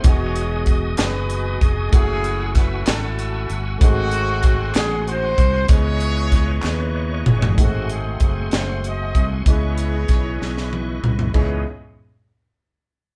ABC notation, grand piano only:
X:1
M:6/8
L:1/8
Q:3/8=64
K:C#m
V:1 name="Grand piano"
[B,DFG]6 | [A,CEFg]6 | [A,^B,DFG]6 | [B,CGd]6 |
[A,B,^B,DFG]6 | [B,CEGd]6 | [B,CDEG] z4 z |]
V:2 name="Grand piano" clef=bass
E,3 z3 | z6 | G,,3 z3 | C,3 z3 |
G,,3 z3 | C,3 z3 | C,, z4 z |]